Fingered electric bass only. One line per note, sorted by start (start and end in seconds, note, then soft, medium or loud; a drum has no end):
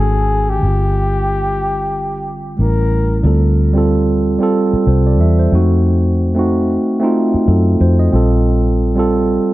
0.00 0.59 G#1 medium
0.63 2.54 G1 medium
2.59 3.20 A1 medium
3.24 4.36 D2 loud
4.73 muted fingered electric bass stroke soft
4.87 5.20 C2 medium
5.20 5.46 E2 medium
5.52 6.76 F2 loud
7.34 muted fingered electric bass stroke soft
7.48 7.75 F#2 medium
7.80 8.07 F2 medium
8.13 9.37 A#1 medium